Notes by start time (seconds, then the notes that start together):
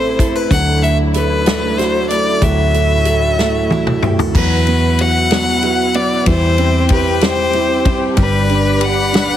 Already playing: A1 C3 E3 A3 C4 E4 A4 C5
0.19 E4 A4, kick, closed hi-hat
0.35 B4
0.50 D2 D3 F#3 F#5, kick, closed hi-hat
0.82 A3 E4 E5, closed hi-hat
1.14 A4 B4, closed hi-hat
1.46 A3, snare, closed hi-hat
1.78 E4 F#4 C5, snare, closed hi-hat
2.10 A3 A4 D5, closed hi-hat
2.42 D2 A2 F#3 E5, kick, closed hi-hat
2.73 A3 E4, closed hi-hat
3.05 A4, closed hi-hat
3.38 A3, snare
3.70 E4 F#4, high tom
3.87 mid tom
4.03 A3 G4, mid tom
4.19 A4, floor tom
4.35 E2 E3 F#3 E4 F#4 B4 F#5, kick, crash
4.67 B3, ride
4.99 E4 F#4 F#5, ride
5.31 F#3 B3, snare, ride
5.63 B3 F#4, ride
5.94 F#3 B3 D5, ride
6.26 E2 E3 G3 C4 E4 G4 C5 G5, kick, ride
6.58 C4, ride
6.89 E4 G4, kick, ride
6.93 B4
7.21 G3 C4 C5, snare, ride
7.53 C4 E4, ride
7.85 G3 C4, kick, ride
8.16 G1 G3 D4 B4 D5 B5, kick, ride
8.49 B3 D4, ride
8.80 D4 G4 F#5, ride
9.12 G3 D4, snare, ride